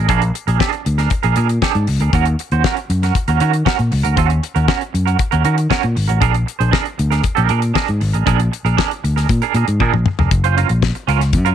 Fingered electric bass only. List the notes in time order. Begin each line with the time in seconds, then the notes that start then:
0.09 A#1
0.48 A#1
0.86 D2
1.24 A#1
1.37 A#2
1.75 G#2
1.88 C#2
2.00 D2
2.13 D#2
2.52 D#2
2.90 F#2
3.28 D#2
3.41 D#3
3.79 A#2
3.92 C#2
4.05 D2
4.18 D#2
4.56 D#2
4.94 F#2
5.33 D#2
5.45 D#3
5.84 A#2
5.97 G#1
6.10 A1
6.22 A#1
6.60 A#1
6.99 D2
7.38 A#1
7.50 A#2
7.89 G#2
8.01 G#1
8.14 A1
8.27 A#1
8.65 A#1
9.04 D2
9.30 A#2
9.54 A#2
9.68 G#2
9.80 A#2
9.94 A#1
10.19 F1
10.31 F#1
10.70 A#1
11.08 C#2
11.34 F#2